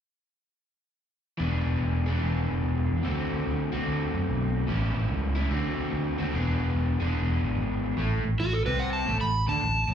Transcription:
1.38 fingered electric bass E1, overdriven electric guitar E3 B3 D4 G#4
1.67 fingered electric bass E1
1.80 fingered electric bass E1
2.06 overdriven electric guitar E3 B3 D4 G#4
2.24 fingered electric bass E1
2.51 fingered electric bass E1
2.64 fingered electric bass E1
2.92 fingered electric bass E2
3.03 fingered electric bass D2, overdriven electric guitar D3 A3 C4 F#4
3.33 fingered electric bass D2
3.47 fingered electric bass D2
3.72 fingered electric bass D2, overdriven electric guitar D3 A3 C4 F#4
3.87 fingered electric bass D2
4.14 fingered electric bass F#2
4.29 fingered electric bass B1
4.67 fingered electric bass A1, overdriven electric guitar A2 E3 G3 C#4 E4
4.96 fingered electric bass A1
5.10 fingered electric bass C#2
5.35 overdriven electric guitar A2 E3 G3 C#4 E4
5.49 fingered electric bass D2, overdriven electric guitar D3 A3 C4 F#4
5.79 fingered electric bass D2
5.93 fingered electric bass D2
6.18 fingered electric bass D#2, overdriven electric guitar D3 A3 C4 F#4
6.32 fingered electric bass E1, overdriven electric guitar E3 B3 D4 G#4
6.61 fingered electric bass E1
6.75 fingered electric bass E1
7.00 fingered electric bass E1, overdriven electric guitar E3 B3 D4 G#4
7.15 fingered electric bass E1
7.43 fingered electric bass G#1
7.56 fingered electric bass G#1
7.97 fingered electric bass A1, overdriven electric guitar A2 A3
8.24 fingered electric bass A1, overdriven electric guitar A2
8.39 fingered electric bass A1, overdriven electric guitar A2, electric slide guitar F#4
8.53 electric slide guitar A4
8.66 fingered electric bass C2, overdriven electric guitar C3 C4, electric slide guitar B4
8.79 electric slide guitar F#5
8.93 electric slide guitar A5
9.06 fingered electric bass A1, overdriven electric guitar A2 A3
9.20 fingered electric bass A1, overdriven electric guitar A2, electric slide guitar B5
9.47 fingered electric bass D2, overdriven electric guitar D3 D4, electric slide guitar A5
9.61 fingered electric bass A1, overdriven electric guitar A2
9.88 fingered electric bass A1, overdriven electric guitar A2

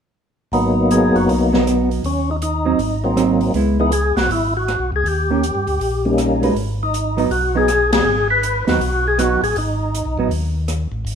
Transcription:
0.52 tonewheel organ G#1 F#3 A#3 B3 D#4, open hi-hat
0.91 hollow-body jazz guitar F#3 B3 D#4, tonewheel organ G#4, closed hi-hat
1.15 tonewheel organ F#1 F#4, open hi-hat
1.28 tonewheel organ B1 D#4, open hi-hat
1.52 hollow-body jazz guitar F#3 B3 D#4, tonewheel organ B3, snare
1.67 cross-stick, closed hi-hat
1.91 open hi-hat
2.03 tonewheel organ D#2 C#4, open hi-hat
2.31 tonewheel organ D#4
2.42 tonewheel organ D#4, closed hi-hat
2.65 hollow-body jazz guitar F#3 C4 D#4
2.79 tonewheel organ G#1, open hi-hat
3.04 tonewheel organ F#3 A#3 C4 D#4
3.16 hollow-body jazz guitar F#3 C4 D#4, cross-stick, closed hi-hat
3.41 open hi-hat
3.54 tonewheel organ C#2, hollow-body jazz guitar G#3 B3 E4, open hi-hat
3.80 tonewheel organ E3 G#3 B3 D#4
3.92 tonewheel organ G#4, closed hi-hat
4.16 tonewheel organ B1 F#4, snare, open hi-hat
4.29 tonewheel organ G#1 E4, open hi-hat
4.57 tonewheel organ F#4
4.68 cross-stick, closed hi-hat
4.79 tonewheel organ B1
4.92 tonewheel organ C#2 G#4
5.04 tonewheel organ D#2, open hi-hat
5.08 tonewheel organ G4
5.30 hollow-body jazz guitar D#3 A#3 C#4 G4
5.43 closed hi-hat
5.55 tonewheel organ G2
5.67 tonewheel organ D2, open hi-hat
5.80 tonewheel organ A#1, open hi-hat
6.05 tonewheel organ G3 A#3 C#4 D#4
6.18 cross-stick, closed hi-hat
6.43 hollow-body jazz guitar G#3 D#4 F#4 B4, open hi-hat
6.55 tonewheel organ G#1, open hi-hat
6.83 tonewheel organ D#4
6.94 closed hi-hat
7.17 hollow-body jazz guitar F#3 B3 D#4, tonewheel organ D#4, open hi-hat
7.30 tonewheel organ B1 F#4, open hi-hat
7.55 hollow-body jazz guitar F#3 B3 D#4, tonewheel organ G#4
7.68 cross-stick, closed hi-hat
7.93 tonewheel organ G#4, snare, ride
8.05 tonewheel organ G#1
8.30 tonewheel organ B4
8.43 closed hi-hat
8.67 tonewheel organ D#2 F#4, hollow-body jazz guitar F#3 B3 D#4, snare, open hi-hat
8.79 tonewheel organ B1, open hi-hat
9.08 tonewheel organ G#4
9.18 hollow-body jazz guitar F#3 B3 D#4, tonewheel organ F#4, cross-stick, closed hi-hat
9.42 tonewheel organ A1 G#4, open hi-hat
9.56 tonewheel organ G#1 D#4, open hi-hat
9.95 closed hi-hat
10.05 tonewheel organ B1
10.18 tonewheel organ A1, hollow-body jazz guitar F#3 B3 D#4
10.29 tonewheel organ D#2, open hi-hat
10.68 cross-stick, closed hi-hat
10.92 tonewheel organ A1
11.05 tonewheel organ G#1, open hi-hat

